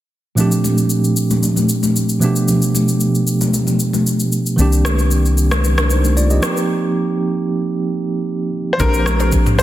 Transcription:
0.35 2.17 A#2 medium
0.35 2.18 F3 medium
0.35 2.18 A3 medium
0.35 2.19 C4 medium
0.35 low conga medium
0.35 shaker medium
0.39 2.19 D4 medium
0.39 2.20 G4 medium
0.52 shaker soft
0.64 high conga medium
0.64 shaker medium
0.78 shaker soft
0.90 shaker medium
1.04 shaker soft
1.17 shaker medium
1.31 high conga medium
1.31 shaker medium
1.43 low conga medium
1.43 shaker medium
1.56 high conga medium
1.56 shaker soft
1.69 shaker medium
1.83 high conga medium
1.83 shaker medium
1.96 shaker medium
2.09 shaker medium
2.19 4.27 B2 medium
2.19 4.28 F3 medium
2.19 4.28 A3 medium
2.19 4.29 B3 medium
2.19 shaker medium
2.24 4.29 D4 medium
2.24 4.30 G4 medium
2.36 shaker soft
2.48 low conga medium
2.48 shaker medium
2.62 shaker medium
2.75 high conga medium
2.75 shaker medium
2.88 shaker soft
3.00 shaker medium
3.15 shaker soft
3.27 shaker medium
3.41 high conga medium
3.41 shaker medium
3.54 low conga medium
3.54 shaker medium
3.67 high conga medium
3.67 shaker soft
3.80 shaker medium
3.93 high conga medium
3.93 shaker medium
4.07 shaker medium
4.20 shaker medium
4.32 shaker medium
4.46 shaker medium
4.56 6.39 C2 medium
4.56 6.38 D#3 medium
4.56 6.39 A#3 medium
4.56 6.39 C4 medium
4.56 low conga medium
4.56 shaker medium
4.60 5.63 D4 medium
4.60 5.63 G4 medium
4.73 shaker soft
4.85 cross-stick medium
4.85 high conga medium
4.85 shaker medium
4.99 shaker soft
5.11 shaker medium
5.25 shaker soft
5.38 shaker medium
5.51 cross-stick medium
5.51 high conga medium
5.51 shaker medium
5.64 low conga medium
5.64 shaker medium
5.77 5.90 D4 medium
5.77 5.90 A#4 medium
5.77 cross-stick medium
5.77 high conga medium
5.77 shaker soft
5.90 6.16 D#4 medium
5.90 6.15 C5 medium
5.90 shaker medium
6.04 high conga medium
6.04 shaker medium
6.17 6.30 F4 medium
6.17 6.30 D5 medium
6.17 shaker medium
6.30 6.45 G4 medium
6.30 6.56 D#5 medium
6.30 shaker medium
6.41 8.48 F3 medium
6.41 8.49 A#3 medium
6.41 8.50 C4 medium
6.41 8.50 D#4 medium
6.41 cross-stick medium
6.41 shaker medium
6.46 8.51 G4 medium
6.57 shaker medium
8.73 8.80 C5 medium
8.77 9.63 A#1 medium
8.77 9.63 F3 medium
8.77 9.63 A#3 medium
8.77 9.63 C4 medium
8.77 8.89 D4 loud
8.77 8.89 G4 medium
8.77 8.89 A4 medium
8.77 9.29 A#4 loud
8.77 8.89 C5 loud
8.77 kick loud
8.77 low conga medium
8.77 shaker medium
8.81 9.63 D4 medium
8.81 8.88 F#4 medium
8.89 9.63 G4 medium
8.94 shaker medium
9.06 cross-stick medium
9.06 high conga medium
9.06 shaker medium
9.20 9.56 D4 medium
9.20 9.56 G4 medium
9.20 9.56 A4 medium
9.20 9.56 C5 medium
9.20 shaker medium
9.32 kick medium
9.32 shaker medium
9.46 mid tom medium
9.46 shaker soft
9.59 9.63 D4 medium
9.59 9.63 G4 medium
9.59 9.63 A4 medium
9.59 9.63 C5 loud
9.59 9.63 C5 medium
9.59 low conga medium
9.59 shaker medium

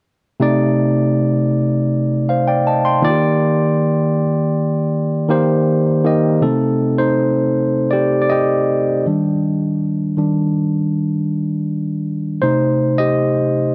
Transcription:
0.40 1.34 C3 medium
0.40 1.35 A3 medium
0.40 1.35 D#4 medium
0.40 1.36 D5 medium
2.29 2.47 C5 soft
2.29 2.47 F5 medium
2.48 2.66 D5 medium
2.48 2.65 G5 medium
2.67 2.85 D#5 soft
2.67 2.84 A5 medium
2.85 3.21 G5 soft
2.85 3.21 C6 medium
3.02 4.23 D#3 medium
3.02 4.23 A#3 medium
3.02 3.10 F4 medium
3.02 4.24 D5 medium
3.10 4.27 G4 medium
5.28 5.76 D#3 medium
5.28 5.76 A#3 medium
5.28 5.77 G4 medium
5.28 5.77 C5 medium
6.04 6.28 D#3 medium
6.04 6.28 A#3 medium
6.04 6.28 G4 medium
6.04 6.29 D#5 medium
6.41 6.91 C3 soft
6.41 6.92 A3 soft
6.41 6.95 C4 medium
6.41 6.92 D#4 medium
6.41 7.00 A4 medium
6.98 7.89 D#4 medium
6.98 7.95 C5 medium
7.91 8.21 G4 medium
7.91 8.20 D5 medium
8.22 8.29 D5 medium
8.30 9.02 G4 medium
8.30 9.01 D#5 medium
9.06 10.16 D#3 soft
9.06 10.17 G3 soft
9.06 10.17 D4 soft
10.17 10.51 D#3 soft
10.17 10.52 G3 soft
10.17 10.52 D4 soft
12.42 12.93 C3 medium
12.42 12.93 A3 soft
12.42 12.96 D#4 medium
12.42 12.95 C5 medium
12.98 13.75 G4 medium
12.98 13.75 D#5 medium

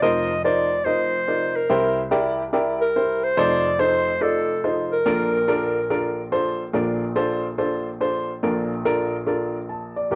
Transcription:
0.02 1.66 F1 medium
0.02 1.66 F2 medium
0.02 0.32 D#4 medium
0.02 0.32 F4 medium
0.02 0.32 A#4 medium
0.02 0.32 C5 loud
0.02 0.41 D#5 loud
0.44 0.74 D#4 medium
0.44 0.74 F4 medium
0.44 0.74 A#4 medium
0.44 0.74 C5 medium
0.44 0.86 D5 loud
0.85 1.16 D#4 medium
0.85 1.16 F4 medium
0.85 1.16 A#4 medium
0.85 1.58 C5 loud
0.85 1.16 D#5 medium
1.28 1.58 D#4 medium
1.28 1.58 F4 medium
1.28 1.58 A#4 medium
1.28 1.58 D5 medium
1.56 2.12 A#4 medium
1.70 3.34 C2 medium
1.70 3.34 C3 medium
1.70 2.00 E4 medium
1.70 2.00 G4 medium
1.70 2.00 A#4 medium
1.70 2.00 C5 loud
2.11 2.41 E4 medium
2.11 2.41 G4 medium
2.11 2.41 A#4 medium
2.11 2.42 D5 loud
2.53 2.83 E4 medium
2.53 2.83 G4 medium
2.53 2.83 A#4 medium
2.53 2.83 D5 medium
2.82 3.26 A#4 loud
2.96 3.26 E4 medium
2.96 3.26 G4 medium
2.96 3.26 A#4 medium
2.96 3.26 C5 medium
3.24 3.40 C5 loud
3.37 5.02 F1 medium
3.37 5.01 F2 medium
3.37 3.67 D#4 loud
3.37 3.67 F4 medium
3.37 3.68 A4 medium
3.37 3.67 C5 loud
3.37 3.82 D5 loud
3.79 4.09 D#4 medium
3.79 4.09 F4 medium
3.79 4.09 A4 medium
3.79 4.09 C5 medium
3.79 4.24 C5 loud
4.21 4.51 D#4 medium
4.21 4.51 F4 medium
4.21 4.51 A4 medium
4.21 4.64 A4 medium
4.21 4.52 D5 medium
4.64 4.94 D#4 medium
4.64 4.94 F4 medium
4.64 4.94 A4 medium
4.64 4.94 C5 medium
4.92 6.28 A#4 medium
5.06 6.70 A#1 medium
5.06 6.70 A#2 medium
5.06 5.36 D4 medium
5.06 5.36 F4 medium
5.06 5.36 A4 medium
5.06 5.36 A#4 loud
5.48 5.78 D4 medium
5.48 5.78 F4 medium
5.48 5.78 A4 medium
5.48 5.78 A#4 loud
5.90 6.20 D4 medium
5.90 6.20 F4 medium
5.90 6.20 A4 medium
5.90 6.20 A#4 medium
6.32 6.62 D4 medium
6.32 6.62 F4 medium
6.32 6.62 A4 medium
6.32 6.62 C5 medium
6.73 8.38 A#1 medium
6.73 8.38 A#2 medium
6.73 7.04 D4 medium
6.73 7.04 F4 medium
6.73 7.04 A4 medium
6.73 7.04 A#4 medium
7.16 7.46 D4 medium
7.16 7.46 F4 medium
7.16 7.46 A4 medium
7.16 7.46 C5 medium
7.58 7.88 D4 medium
7.58 7.88 F4 medium
7.58 7.88 A4 medium
7.58 7.88 C5 medium
8.01 8.30 D4 medium
8.01 8.30 F4 medium
8.01 8.31 A4 medium
8.01 8.31 C5 medium
8.43 10.07 A#1 medium
8.43 10.07 A#2 medium
8.43 8.73 D4 medium
8.43 8.73 F4 medium
8.43 8.73 A4 medium
8.43 8.73 A#4 medium
8.85 9.15 D4 medium
8.85 9.15 F4 medium
8.85 9.15 A4 medium
8.85 9.15 A#4 loud
9.26 9.57 D4 medium
9.26 9.57 F4 medium
9.26 9.57 A4 medium
9.26 9.57 A#4 medium
9.69 9.95 A5 medium
9.97 10.15 D5 medium
10.11 10.15 A#1 medium
10.11 10.15 A#2 medium
10.11 10.15 D4 medium
10.11 10.15 F4 medium
10.11 10.15 G4 medium
10.11 10.15 A#4 medium

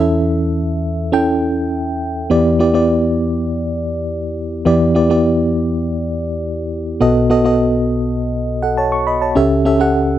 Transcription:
0.00 2.26 E2 medium
0.00 2.26 E3 medium
0.00 1.12 C#4 medium
0.00 1.13 E4 medium
0.00 1.13 A4 medium
0.00 2.32 E5 medium
1.12 2.23 C#4 medium
1.12 2.23 E4 medium
1.12 2.23 A4 medium
1.12 2.23 G5 loud
2.30 4.62 E2 medium
2.30 4.62 E3 medium
2.30 2.58 B3 medium
2.30 2.58 E4 medium
2.30 2.58 G4 medium
2.30 2.58 D5 medium
2.59 2.73 B3 medium
2.59 2.73 E4 medium
2.59 2.73 G4 medium
2.59 2.74 D5 medium
2.74 3.84 B3 medium
2.74 3.84 E4 medium
2.74 3.85 G4 medium
2.74 3.85 D5 loud
4.65 6.97 E2 medium
4.65 6.97 E3 medium
4.65 4.93 B3 medium
4.65 4.93 E4 medium
4.65 4.94 G4 medium
4.65 4.94 D5 medium
4.95 5.09 B3 medium
4.95 5.09 E4 medium
4.95 5.09 G4 medium
4.95 5.09 D5 medium
5.10 6.20 B3 medium
5.10 6.20 E4 medium
5.10 6.20 G4 medium
5.10 6.20 D5 medium
7.00 9.32 B1 medium
7.00 9.32 B2 medium
7.00 7.28 B3 medium
7.00 7.28 F#4 medium
7.00 7.29 A4 medium
7.00 7.29 D#5 medium
7.30 7.43 B3 medium
7.30 7.44 F#4 medium
7.30 7.44 A4 medium
7.30 7.44 D#5 medium
7.45 8.55 B3 medium
7.45 8.55 F#4 medium
7.45 8.48 A4 medium
7.45 8.48 D#5 medium
8.62 8.77 A4 medium
8.62 8.77 F#5 medium
8.77 8.92 C#5 medium
8.77 8.91 A5 medium
8.92 9.06 C#6 medium
9.07 9.21 D#5 medium
9.07 9.21 B5 medium
9.22 9.50 C#5 medium
9.22 9.50 A5 medium
9.35 10.19 C#2 medium
9.35 10.19 C#3 medium
9.35 9.63 C#4 medium
9.35 9.64 G4 medium
9.35 9.64 A4 medium
9.35 9.64 E5 medium
9.65 9.78 C#4 medium
9.65 9.79 G4 medium
9.65 9.79 A4 medium
9.65 9.80 E5 medium
9.80 10.19 C#4 medium
9.80 10.19 G4 medium
9.80 10.19 A4 medium
9.80 10.19 F#5 loud

